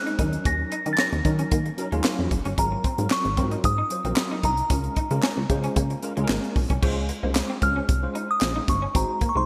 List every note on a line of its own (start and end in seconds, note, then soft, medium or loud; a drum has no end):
0.00 0.19 G#3 medium
0.00 0.18 C#4 medium
0.00 0.18 D#4 medium
0.00 0.19 C5 medium
0.00 0.47 F#6 medium
0.07 0.13 D#4 medium
0.07 closed hi-hat soft
0.19 0.37 D#2 loud
0.19 0.72 F#3 medium
0.19 0.72 C#4 medium
0.19 0.72 D#4 medium
0.19 0.27 D#4 medium
0.19 0.72 A#4 medium
0.19 kick medium
0.19 closed hi-hat medium
0.33 closed hi-hat soft
0.45 0.64 D#2 loud
0.45 0.53 C#4 medium
0.45 0.94 A#6 loud
0.45 kick loud
0.45 closed hi-hat loud
0.72 0.80 D#4 medium
0.72 closed hi-hat medium
0.86 0.95 D#3 medium
0.86 1.10 F#3 medium
0.86 1.10 C#4 medium
0.86 1.10 D#4 medium
0.86 1.10 A#4 medium
0.86 muted clean electric guitar stroke soft
0.86 closed hi-hat medium
0.93 0.99 A6 medium
0.98 1.06 C#4 medium
0.98 2.28 A#6 loud
0.98 snare loud
0.98 clap medium
1.12 1.21 D#2 loud
1.12 muted clean electric guitar stroke soft
1.12 closed hi-hat soft
1.25 1.44 D#3 loud
1.25 1.57 F#3 medium
1.25 1.57 C#4 medium
1.25 1.57 D#4 medium
1.25 1.57 A#4 medium
1.25 kick loud
1.25 closed hi-hat medium
1.39 1.46 C#4 medium
1.39 closed hi-hat soft
1.51 1.70 D#3 medium
1.51 1.59 A#3 medium
1.51 kick loud
1.51 closed hi-hat medium
1.66 muted clean electric guitar stroke soft
1.66 closed hi-hat soft
1.78 1.86 F#3 medium
1.78 1.86 C#4 medium
1.78 1.87 D#4 medium
1.78 1.87 A#4 medium
1.78 closed hi-hat medium
1.92 2.01 D#2 medium
1.92 2.31 F#3 medium
1.92 1.99 G#3 medium
1.92 2.31 C#4 medium
1.92 2.31 D#4 medium
1.92 2.31 F4 medium
1.92 closed hi-hat soft
2.04 2.13 A#3 medium
2.04 snare loud
2.04 clap medium
2.19 2.28 F2 medium
2.31 2.41 F#1 loud
2.31 muted clean electric guitar stroke soft
2.31 kick loud
2.31 closed hi-hat medium
2.45 2.54 G1 medium
2.45 2.52 C#4 medium
2.45 closed hi-hat soft
2.58 2.76 G#1 loud
2.58 2.82 F#3 medium
2.58 2.66 G#3 medium
2.58 2.82 C4 medium
2.58 2.82 F4 medium
2.58 2.82 A#4 medium
2.58 3.13 A#5 medium
2.58 kick medium
2.58 closed hi-hat loud
2.72 muted clean electric guitar stroke soft
2.84 2.92 C4 medium
2.84 kick medium
2.84 closed hi-hat medium
2.98 3.07 G#2 medium
2.98 3.22 F#3 medium
2.98 3.22 C4 medium
2.98 3.22 F4 medium
2.98 3.22 A#4 medium
2.98 closed hi-hat medium
3.10 3.66 C#6 loud
3.10 muted clean electric guitar stroke soft
3.10 snare loud
3.10 clap medium
3.25 3.39 G#1 medium
3.25 closed hi-hat soft
3.37 3.56 G#2 medium
3.37 3.69 F#3 medium
3.37 3.69 C4 medium
3.37 3.45 C4 medium
3.37 3.70 F4 medium
3.37 3.70 A#4 medium
3.37 kick loud
3.37 closed hi-hat medium
3.51 3.58 D#4 medium
3.51 closed hi-hat soft
3.64 3.83 G#2 medium
3.64 4.47 D#6 loud
3.64 kick loud
3.64 closed hi-hat medium
3.78 3.85 D#4 medium
3.90 3.99 F#3 medium
3.90 3.99 C4 medium
3.90 3.99 F4 medium
3.90 3.99 C5 medium
3.90 muted clean electric guitar stroke soft
3.90 closed hi-hat medium
4.04 4.13 A#1 medium
4.04 4.43 F#3 medium
4.04 4.44 C4 medium
4.04 4.12 C4 medium
4.04 4.44 F4 medium
4.04 4.44 A#4 medium
4.04 closed hi-hat soft
4.16 muted clean electric guitar stroke soft
4.16 snare loud
4.16 clap medium
4.31 4.38 D#4 medium
4.43 4.62 C2 medium
4.43 4.52 D#4 medium
4.43 6.26 A#5 medium
4.43 kick medium
4.43 closed hi-hat medium
4.57 closed hi-hat soft
4.70 4.89 C#2 loud
4.70 4.94 G#3 medium
4.70 4.94 C#4 medium
4.70 4.78 C#4 medium
4.70 4.94 F4 medium
4.70 4.94 A#4 medium
4.70 kick loud
4.70 closed hi-hat loud
4.84 closed hi-hat soft
4.96 5.05 D#4 medium
4.96 kick medium
4.96 closed hi-hat medium
5.10 5.20 C#3 loud
5.10 5.34 G#3 medium
5.10 5.34 C#4 medium
5.10 5.34 F4 medium
5.10 5.35 A#4 medium
5.10 muted clean electric guitar stroke soft
5.10 closed hi-hat medium
5.23 5.31 C#4 medium
5.23 snare loud
5.23 clap medium
5.37 5.46 C#2 medium
5.37 muted clean electric guitar stroke soft
5.49 5.68 C#3 loud
5.49 5.82 G#3 medium
5.49 5.82 C#4 medium
5.49 5.82 F4 medium
5.49 5.82 C5 medium
5.49 kick loud
5.49 closed hi-hat medium
5.64 5.71 C#4 medium
5.64 closed hi-hat medium
5.76 5.95 C#3 loud
5.76 5.84 A#3 medium
5.76 kick loud
5.76 closed hi-hat medium
5.90 muted clean electric guitar stroke soft
5.90 closed hi-hat soft
6.02 6.11 G#3 medium
6.02 6.11 C#4 medium
6.02 6.11 F4 medium
6.02 6.11 A#4 loud
6.02 closed hi-hat medium
6.17 6.26 C#2 medium
6.17 6.56 G#3 medium
6.17 6.24 G#3 medium
6.17 6.56 C#4 medium
6.17 6.56 F4 medium
6.17 6.23 G#4 medium
6.17 closed hi-hat soft
6.24 6.59 A#4 loud
6.28 6.39 G#1 medium
6.28 6.37 A#3 medium
6.28 snare loud
6.28 clap medium
6.44 closed hi-hat soft
6.56 6.66 B1 medium
6.56 muted clean electric guitar stroke soft
6.56 kick medium
6.56 open hi-hat medium
6.70 6.79 C2 medium
6.70 6.77 C#4 medium
6.70 kick medium
6.70 closed hi-hat soft
6.82 7.11 C#2 medium
6.82 7.06 G#3 medium
6.82 7.06 C#4 medium
6.82 6.90 C#4 medium
6.82 7.06 F4 medium
6.82 7.07 C5 loud
6.82 kick loud
6.82 crash loud
7.09 muted clean electric guitar stroke soft
7.09 closed hi-hat medium
7.23 7.42 C2 loud
7.23 7.47 G#3 medium
7.23 7.30 A#3 medium
7.23 7.47 C#4 medium
7.23 7.47 F4 medium
7.23 7.47 C5 medium
7.35 snare loud
7.35 clap medium
7.35 closed hi-hat medium
7.50 7.57 C4 medium
7.62 7.81 C#2 medium
7.62 7.86 G#3 medium
7.62 7.86 C#4 medium
7.62 7.86 F4 medium
7.62 7.86 C5 medium
7.62 8.32 F6 loud
7.62 muted clean electric guitar stroke medium
7.62 kick loud
7.62 closed hi-hat medium
7.76 7.83 C#4 medium
7.89 8.07 C2 loud
7.89 kick loud
7.89 closed hi-hat medium
8.03 8.26 G#3 medium
8.03 8.26 C#4 medium
8.03 8.27 F4 medium
8.03 8.27 C5 medium
8.15 8.23 D#4 medium
8.15 closed hi-hat medium
8.31 8.70 D#6 loud
8.41 8.60 A#1 medium
8.41 8.74 G#3 medium
8.41 8.74 C#4 medium
8.41 8.74 F4 medium
8.41 8.74 C5 medium
8.41 snare loud
8.41 clap medium
8.41 closed hi-hat medium
8.56 8.63 D#4 medium
8.68 8.87 G1 medium
8.68 8.96 C#6 medium
8.68 muted clean electric guitar stroke soft
8.68 kick loud
8.68 closed hi-hat medium
8.82 8.89 C#4 medium
8.94 9.05 G#1 loud
8.94 9.19 G#3 medium
8.94 9.03 C4 medium
8.94 9.19 D#4 medium
8.94 9.19 F#4 medium
8.94 9.19 C5 medium
8.94 9.30 A#5 medium
8.94 kick loud
8.94 closed hi-hat loud
9.21 9.29 A#3 medium
9.21 kick loud
9.21 closed hi-hat medium
9.29 9.36 C#6 medium
9.35 9.44 C2 medium
9.35 9.46 G#3 medium
9.35 9.46 D#4 medium
9.35 9.46 F#4 medium
9.35 9.46 C5 medium
9.35 9.46 C6 medium
9.35 muted clean electric guitar stroke soft